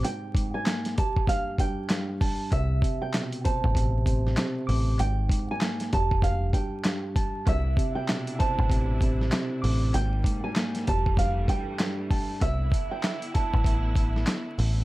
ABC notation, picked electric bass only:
X:1
M:4/4
L:1/16
Q:"Swing 16ths" 1/4=97
K:C
V:1 name="Picked electric bass" clef=bass
z16 | C,,2 z4 z A,,,4- A,,, z2 A,,,2 | _A,,,2 z4 F,,,4 z6 | C,,2 z4 z A,,,4- A,,, z2 A,,,2 |
_A,,,2 z4 F,,,4 z6 | C,,2 z4 z A,,,4- A,,, z2 A,,,2 |]